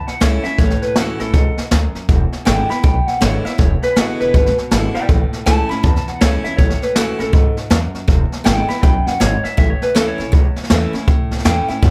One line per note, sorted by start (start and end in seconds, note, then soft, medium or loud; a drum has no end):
0.00 0.56 E2 medium
0.07 0.21 F#5 medium
0.07 muted upright bass stroke medium
0.07 snare soft
0.20 0.36 C#2 medium
0.20 0.43 E3 medium
0.20 0.44 A3 medium
0.20 0.44 C#4 medium
0.20 0.43 E4 loud
0.20 0.44 C#5 medium
0.20 snare loud
0.20 hi-hat pedal medium
0.44 0.59 C#4 soft
0.44 0.58 E4 medium
0.44 0.58 E5 medium
0.44 muted upright bass stroke medium
0.44 snare soft
0.58 0.73 A1 medium
0.58 1.31 A2 medium
0.58 0.82 C#5 medium
0.58 kick loud
0.58 snare soft
0.70 snare soft
0.82 0.96 B4 medium
0.82 muted upright bass stroke medium
0.82 snare soft
0.96 1.11 D2 medium
0.96 1.19 E3 medium
0.96 1.19 A3 medium
0.96 1.19 C#4 medium
0.96 1.19 E4 medium
0.96 1.20 F#4 medium
0.96 snare loud
0.96 hi-hat pedal medium
1.19 1.29 A1 medium
1.19 1.34 C#4 soft
1.19 1.33 E4 medium
1.19 1.56 A4 medium
1.19 snare soft
1.33 1.48 C#2 loud
1.33 1.70 G#2 medium
1.33 kick loud
1.33 snare soft
1.57 muted upright bass stroke medium
1.57 snare soft
1.71 1.86 D2 medium
1.71 2.07 F#2 medium
1.71 snare loud
1.71 hi-hat pedal medium
1.95 muted upright bass stroke medium
1.95 snare soft
2.09 2.24 E1 loud
2.09 2.81 E2 medium
2.09 kick loud
2.09 snare soft
2.32 muted upright bass stroke medium
2.32 snare soft
2.45 2.61 G#1 loud
2.45 2.68 D3 medium
2.45 2.69 G#3 medium
2.45 2.69 B3 medium
2.45 2.68 E4 medium
2.45 2.69 G5 loud
2.45 snare loud
2.45 hi-hat pedal medium
2.69 2.84 B3 soft
2.69 2.83 E4 medium
2.69 2.83 B5 medium
2.69 muted upright bass stroke medium
2.69 snare soft
2.83 2.99 B1 medium
2.83 3.56 B2 medium
2.83 3.07 G5 medium
2.83 kick loud
2.83 snare soft
3.07 3.20 F#5 loud
3.07 muted upright bass stroke medium
3.07 snare soft
3.21 3.36 G#1 medium
3.21 3.44 D3 medium
3.21 3.44 G#3 medium
3.21 3.44 B3 medium
3.21 3.44 E4 medium
3.21 3.45 C#5 medium
3.21 snare loud
3.21 hi-hat pedal medium
3.45 3.59 B3 medium
3.45 3.58 E4 medium
3.45 3.60 E5 medium
3.45 muted upright bass stroke medium
3.45 snare soft
3.58 3.73 E1 medium
3.58 4.31 E2 medium
3.58 3.82 C#5 medium
3.58 kick loud
3.58 snare soft
3.83 3.96 B4 medium
3.83 muted upright bass stroke medium
3.83 snare soft
3.96 4.11 A1 medium
3.96 4.32 D3 medium
3.96 4.32 G#3 medium
3.96 4.33 B3 loud
3.96 4.33 E4 medium
3.96 4.19 F#4 medium
3.96 snare loud
3.96 hi-hat pedal medium
4.20 4.29 E1 medium
4.20 4.56 B4 medium
4.20 snare soft
4.34 4.48 G#1 medium
4.34 5.06 B2 medium
4.34 kick loud
4.34 snare soft
4.46 snare soft
4.58 muted upright bass stroke medium
4.58 snare soft
4.71 4.86 G#1 medium
4.71 4.94 D3 medium
4.71 4.94 G#3 medium
4.71 4.94 B3 medium
4.71 4.94 E4 medium
4.71 snare loud
4.71 hi-hat pedal medium
4.95 5.09 B3 soft
4.95 5.08 E4 medium
4.95 5.08 D5 medium
4.95 5.08 G5 medium
4.95 muted upright bass stroke medium
4.95 snare soft
5.09 5.24 A1 medium
5.09 5.81 A2 medium
5.09 kick loud
5.09 snare soft
5.32 muted upright bass stroke medium
5.32 snare soft
5.46 5.61 C#2 medium
5.46 5.68 E3 medium
5.46 5.69 A3 medium
5.46 5.69 C#4 medium
5.46 5.68 E4 medium
5.46 5.69 A5 loud
5.46 snare loud
5.46 hi-hat pedal medium
5.69 5.83 C#4 medium
5.69 5.83 E4 medium
5.69 5.84 B5 medium
5.69 muted upright bass stroke medium
5.69 snare soft
5.83 6.55 E2 medium
5.83 5.98 E2 medium
5.83 6.08 A5 medium
5.83 kick loud
5.83 snare soft
5.96 snare soft
6.08 6.21 F#5 medium
6.08 muted upright bass stroke medium
6.08 snare soft
6.21 6.36 C#2 medium
6.21 6.43 E3 medium
6.21 6.44 A3 medium
6.21 6.44 C#4 medium
6.21 6.43 E4 medium
6.21 6.44 C#5 medium
6.21 snare loud
6.21 hi-hat pedal medium
6.44 6.59 C#4 medium
6.44 6.58 E4 medium
6.44 6.57 E5 medium
6.44 muted upright bass stroke medium
6.44 snare soft
6.57 6.73 A1 loud
6.57 7.31 A2 medium
6.57 6.83 C#5 loud
6.57 kick loud
6.57 snare soft
6.70 snare soft
6.82 6.96 B4 medium
6.82 muted upright bass stroke medium
6.82 snare soft
6.95 7.11 D2 medium
6.95 7.18 E3 medium
6.95 7.19 A3 medium
6.95 7.19 C#4 medium
6.95 7.18 E4 medium
6.95 7.20 F#4 medium
6.95 snare loud
6.95 hi-hat pedal medium
7.19 7.28 A1 medium
7.19 7.33 C#4 soft
7.19 7.32 E4 medium
7.19 7.56 A4 medium
7.19 snare soft
7.33 7.48 C#2 loud
7.33 7.69 G#2 medium
7.33 kick loud
7.33 snare soft
7.57 muted upright bass stroke medium
7.57 snare soft
7.70 7.85 E2 medium
7.70 8.06 F#2 medium
7.70 snare loud
7.70 hi-hat pedal medium
7.95 muted upright bass stroke medium
7.95 snare soft
8.08 8.23 E1 medium
8.08 8.80 E2 medium
8.08 kick loud
8.08 snare soft
8.32 muted upright bass stroke medium
8.32 snare soft
8.44 8.60 G#1 medium
8.44 8.67 D3 medium
8.44 8.68 G#3 medium
8.44 8.68 B3 medium
8.44 8.67 E4 medium
8.44 8.68 G5 loud
8.44 snare loud
8.44 hi-hat pedal medium
8.68 8.83 B3 soft
8.68 8.82 E4 medium
8.68 8.82 B5 medium
8.68 muted upright bass stroke medium
8.68 snare soft
8.83 8.98 B1 medium
8.83 9.19 F#2 medium
8.83 9.06 G5 medium
8.83 kick loud
8.83 snare soft
9.06 9.20 F#5 medium
9.06 muted upright bass stroke medium
9.06 snare soft
9.20 9.35 G#1 medium
9.20 9.56 G#2 medium
9.20 9.44 C#5 medium
9.20 snare loud
9.20 hi-hat pedal medium
9.44 9.57 E5 medium
9.44 muted upright bass stroke medium
9.44 snare soft
9.57 9.73 A1 loud
9.57 10.30 A2 medium
9.57 9.70 E5 loud
9.57 kick loud
9.57 snare soft
9.70 9.82 C#5 medium
9.81 9.95 B4 medium
9.81 muted upright bass stroke medium
9.81 snare soft
9.95 10.10 D2 medium
9.95 10.18 E3 medium
9.95 10.18 A3 medium
9.95 10.18 C#4 medium
9.95 10.17 E4 medium
9.95 10.07 A4 medium
9.95 snare loud
9.95 hi-hat pedal medium
10.08 10.44 C#5 medium
10.18 10.28 A1 medium
10.18 10.33 C#4 soft
10.18 10.32 E4 medium
10.18 snare soft
10.32 10.48 C#2 medium
10.32 11.04 E2 medium
10.32 kick loud
10.32 snare soft
10.56 muted upright bass stroke medium
10.56 snare soft
10.63 snare soft
10.70 10.85 E2 medium
10.70 10.93 E3 medium
10.70 10.93 A3 medium
10.70 10.93 C#4 medium
10.70 10.92 E4 medium
10.70 snare loud
10.70 hi-hat pedal medium
10.93 11.08 C#4 medium
10.93 11.07 E4 medium
10.93 muted upright bass stroke medium
10.93 snare soft
11.08 11.24 A1 medium
11.08 11.80 A2 medium
11.08 kick loud
11.08 snare soft
11.31 11.41 C#2 medium
11.31 snare soft
11.38 snare soft
11.45 11.61 E2 loud
11.45 11.67 E3 medium
11.45 11.68 A3 medium
11.45 11.68 C#4 medium
11.45 11.67 E4 medium
11.45 11.69 G5 medium
11.45 snare loud
11.45 hi-hat pedal medium
11.68 11.83 C#4 soft
11.68 11.82 E4 medium
11.68 11.90 E5 medium
11.68 muted upright bass stroke medium
11.68 snare soft
11.82 11.90 F#2 medium
11.82 11.90 B2 medium
11.82 kick loud
11.82 snare soft